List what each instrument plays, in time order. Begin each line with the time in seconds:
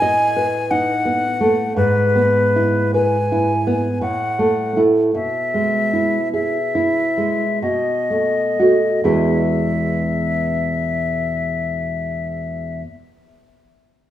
Already playing: nylon-string guitar A2, flute G#5
0.02 nylon-string guitar D#5
0.36 nylon-string guitar B4
0.71 nylon-string guitar D#4, flute F#5
1.05 nylon-string guitar B3
1.41 nylon-string guitar A3
1.76 nylon-string guitar G#2, flute B4
2.15 nylon-string guitar B3
2.56 nylon-string guitar E4
2.94 nylon-string guitar B4, flute G#5
3.32 nylon-string guitar E4
3.67 nylon-string guitar B3
4.01 nylon-string guitar A2, flute F#5
4.39 nylon-string guitar A3
4.76 nylon-string guitar A3 E4
5.14 nylon-string guitar B2, flute E5
5.54 nylon-string guitar G#3
5.93 nylon-string guitar E4
6.33 nylon-string guitar G#4, flute E5
6.75 nylon-string guitar E4
7.17 nylon-string guitar G#3
7.62 nylon-string guitar B2, flute D#5
8.10 nylon-string guitar A3
8.59 nylon-string guitar A3 F#4
9.04 nylon-string guitar E2 B2 G#3 B3 E4 G#4, flute E5